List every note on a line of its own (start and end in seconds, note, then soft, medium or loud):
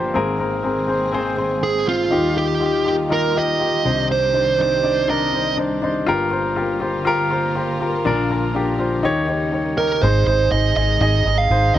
0.00 0.11 G1 medium
0.00 0.11 G2 medium
0.00 0.13 F3 medium
0.00 0.11 G3 medium
0.00 2.08 A#3 medium
0.00 0.13 D4 medium
0.00 0.17 F4 loud
0.00 0.11 G4 medium
0.00 0.17 G4 medium
0.00 0.16 A#4 loud
0.00 0.16 C5 medium
0.14 2.08 G#1 medium
0.14 2.08 G#2 medium
0.14 6.04 D#3 medium
0.14 2.11 G#3 medium
0.14 0.35 C4 medium
0.14 2.11 C4 medium
0.14 0.36 G#4 medium
0.14 2.11 G#4 medium
0.14 0.36 A#4 loud
0.39 0.60 C4 medium
0.39 0.60 G#4 medium
0.39 0.61 A#4 medium
0.63 0.84 C4 medium
0.63 0.85 G#4 medium
0.63 0.85 A#4 medium
0.87 1.09 C4 medium
0.87 1.09 G#4 medium
0.87 1.10 C5 medium
1.12 1.34 C4 medium
1.12 1.34 G#4 medium
1.12 1.35 C5 loud
1.36 1.58 C4 medium
1.36 1.59 G#4 medium
1.36 1.59 C5 medium
1.61 1.83 C4 medium
1.61 1.83 G#4 medium
1.61 1.88 G#4 medium
1.61 1.84 C5 medium
1.86 2.08 C4 medium
1.86 2.37 F4 medium
1.86 2.08 G#4 medium
1.86 2.09 C5 medium
2.10 3.81 D#2 medium
2.10 3.81 D#3 medium
2.10 8.01 G3 medium
2.10 3.84 A#3 medium
2.10 2.32 D#4 medium
2.10 2.33 F4 medium
2.10 3.83 F4 medium
2.10 6.03 G4 medium
2.10 2.33 G4 medium
2.35 2.57 D#4 medium
2.35 2.58 F4 medium
2.35 2.58 G4 medium
2.35 2.86 G4 medium
2.60 2.82 D#4 medium
2.60 2.82 F4 medium
2.60 2.83 G4 medium
2.85 3.07 D#4 medium
2.85 3.07 F4 soft
2.85 3.08 G4 medium
2.85 2.94 G4 medium
3.09 3.31 D#4 medium
3.09 3.31 F4 medium
3.09 3.32 A#4 medium
3.09 3.37 A#4 medium
3.34 3.56 D#4 medium
3.34 3.56 F4 medium
3.34 3.57 G4 medium
3.34 4.07 D#5 medium
3.59 3.81 D#4 medium
3.59 3.81 F4 soft
3.59 3.82 G4 medium
3.84 5.79 C2 medium
3.84 5.79 C3 medium
3.84 6.05 C4 medium
3.84 4.26 D4 medium
3.84 4.27 D#4 medium
3.84 4.27 C5 medium
4.12 4.60 C5 medium
4.33 4.55 D4 medium
4.33 4.55 D#4 medium
4.33 4.56 C5 medium
4.58 4.79 D4 medium
4.58 4.80 D#4 medium
4.58 4.81 C5 medium
4.58 5.06 C5 medium
4.83 5.04 D4 medium
4.83 5.05 D#4 medium
4.83 5.05 D5 medium
5.08 5.29 D4 medium
5.08 5.30 D#4 medium
5.08 5.30 A#4 medium
5.08 5.55 D#5 medium
5.33 5.54 D4 medium
5.33 5.54 D#4 medium
5.33 5.55 C5 medium
5.57 5.78 D4 medium
5.57 5.79 D#4 medium
5.57 5.79 C5 medium
5.82 6.03 D4 medium
5.82 6.04 D#4 medium
5.82 6.04 C5 medium
6.07 8.01 G1 medium
6.07 8.01 G2 medium
6.07 8.04 D3 medium
6.07 9.99 A#3 medium
6.07 6.28 F4 loud
6.07 9.01 F4 medium
6.07 6.29 G4 medium
6.07 9.99 A#4 medium
6.07 6.29 A#4 loud
6.31 6.52 F4 medium
6.31 6.53 G4 medium
6.31 6.53 C5 medium
6.56 6.77 F4 medium
6.56 6.78 G4 medium
6.56 6.78 A#4 medium
6.80 7.02 F4 medium
6.80 7.02 G4 medium
6.80 7.03 C5 medium
7.05 7.26 F4 medium
7.05 7.27 G4 medium
7.05 7.27 A#4 loud
7.31 7.52 F4 medium
7.31 7.52 G4 medium
7.31 7.53 C5 medium
7.55 7.76 F4 medium
7.55 7.77 G4 medium
7.55 7.77 C5 medium
7.80 8.01 F4 medium
7.80 8.01 G4 medium
7.80 8.02 A#4 medium
8.05 9.00 A#1 medium
8.05 9.00 A#2 medium
8.05 9.03 D3 medium
8.05 9.03 F3 medium
8.05 8.26 D4 medium
8.05 8.26 F4 medium
8.05 8.27 A#4 loud
8.30 8.51 D4 medium
8.30 8.51 F4 medium
8.30 8.52 A#4 medium
8.54 8.75 D4 medium
8.54 8.76 F4 medium
8.54 8.76 G4 medium
8.78 8.99 D4 medium
8.78 9.00 F4 medium
8.78 9.00 C5 medium
9.03 9.99 D#2 medium
9.03 10.02 C#3 medium
9.03 9.99 D#3 medium
9.03 10.01 G3 medium
9.03 10.01 D#4 medium
9.03 9.24 D#4 medium
9.03 9.25 G4 medium
9.03 9.25 C#5 loud
9.27 9.49 D#4 medium
9.27 9.49 G4 medium
9.27 9.50 C#5 medium
9.52 9.73 D#4 medium
9.52 9.74 G4 medium
9.52 9.74 C#5 medium
9.77 9.99 D#4 medium
9.77 9.99 G4 medium
9.77 10.01 A#4 medium
9.77 10.00 A#4 medium
10.02 10.23 G#1 medium
10.02 10.73 G#2 medium
10.02 11.74 C3 medium
10.02 11.79 D#3 medium
10.02 11.74 G#3 medium
10.02 10.23 D#4 medium
10.02 11.74 D#4 medium
10.02 11.74 G#4 medium
10.02 10.24 G#4 medium
10.02 10.26 C5 medium
10.02 10.24 C5 medium
10.27 10.48 G#1 medium
10.27 10.48 D#4 medium
10.27 10.48 G#4 medium
10.27 10.50 C5 medium
10.27 10.49 C5 medium
10.51 10.72 G#1 medium
10.51 10.73 D#4 medium
10.51 10.73 G#4 medium
10.51 10.73 C5 medium
10.51 10.75 D#5 medium
10.76 10.97 G#1 medium
10.76 10.97 D#4 medium
10.76 10.98 G#4 medium
10.76 11.00 D#5 medium
10.76 10.98 D#5 medium
11.01 11.21 G#1 medium
11.01 11.22 D#4 medium
11.01 11.22 G#4 medium
11.01 11.40 D#5 medium
11.01 11.23 D#5 medium
11.25 11.46 G#1 medium
11.25 11.47 D#4 medium
11.25 11.47 G#4 medium
11.25 11.48 D#5 medium
11.38 11.76 F5 medium
11.50 11.71 G#1 medium
11.50 11.71 D#4 medium
11.50 11.72 G#4 medium
11.50 11.72 C5 medium
11.74 11.79 D#2 medium
11.74 11.79 A#2 medium
11.74 11.79 D#3 medium
11.74 11.79 G3 medium
11.74 11.79 D#4 medium
11.74 11.79 G4 medium
11.74 11.79 D#5 medium